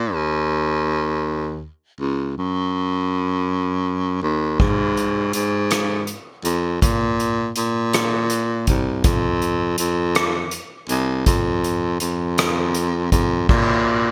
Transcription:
Already playing: A#2
0.14 D#2
2.00 C#2
2.38 F#2
4.23 D#2
4.60 G#2, kick, crash
4.97 closed hi-hat
5.33 G#2, closed hi-hat
5.71 cross-stick, closed hi-hat
6.07 closed hi-hat
6.45 F2, closed hi-hat
6.82 A#2, kick, closed hi-hat
7.20 closed hi-hat
7.56 A#2, closed hi-hat
7.93 cross-stick, closed hi-hat
8.30 closed hi-hat
8.67 C2, kick, closed hi-hat
9.04 F2, kick, closed hi-hat
9.42 closed hi-hat
9.78 F2, closed hi-hat
10.15 cross-stick, closed hi-hat
10.51 closed hi-hat
10.89 C2, closed hi-hat
11.26 F2, kick, closed hi-hat
11.64 closed hi-hat
12.00 F2, closed hi-hat
12.38 cross-stick, closed hi-hat
12.75 closed hi-hat
13.12 F2, kick, closed hi-hat
13.49 A#2, kick, crash
13.87 ride

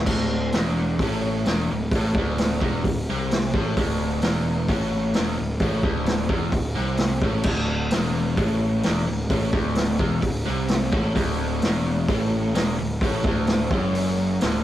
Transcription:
0.06 D1 D2, kick, crash
0.52 E1 E2, snare, open hi-hat
0.99 A1 A2, kick, open hi-hat
1.46 E1 E2, snare, open hi-hat
1.70 D1 D2
1.92 A1 A2, kick, open hi-hat
2.15 D1 D2, kick
2.38 snare, open hi-hat
2.61 E1 E2, kick
2.84 D1 D2, kick, open hi-hat
3.09 C2 C3
3.31 snare, open hi-hat
3.54 A1 A2, kick
3.77 D1 D2, kick, open hi-hat
4.22 E1 E2, snare, open hi-hat
4.68 A1 A2, kick, open hi-hat
5.14 E1 E2, snare, open hi-hat
5.37 D1 D2
5.60 A1 A2, kick, open hi-hat
5.83 D1 D2, kick
6.06 snare, open hi-hat
6.29 E1 E2, kick
6.52 D1 D2, kick, open hi-hat
6.76 C2 C3
6.97 snare, open hi-hat
7.22 A1 A2, kick
7.43 D1 D2, kick, crash
7.91 E2, snare, open hi-hat
7.95 E1
8.37 A1 A2, kick, open hi-hat
8.83 E1 E2, snare, open hi-hat
9.07 D1 D2
9.30 A1 A2, kick, open hi-hat
9.53 D1 D2, kick
9.75 snare, open hi-hat
9.99 E1 E2, kick
10.22 D1 D2, kick, open hi-hat
10.46 C2 C3
10.68 snare, open hi-hat
10.92 A1 A2, kick
11.15 D1 D2, kick, open hi-hat
11.62 E1 E2, snare, open hi-hat
12.08 A1 A2, kick, open hi-hat
12.55 E1 E2, snare, open hi-hat
12.79 D1 D2
13.01 A1 A2, kick, open hi-hat
13.24 D1 D2, kick
13.47 snare, open hi-hat
13.71 F#1 F#2, kick
13.95 open hi-hat
14.41 D1 D2, snare, open hi-hat

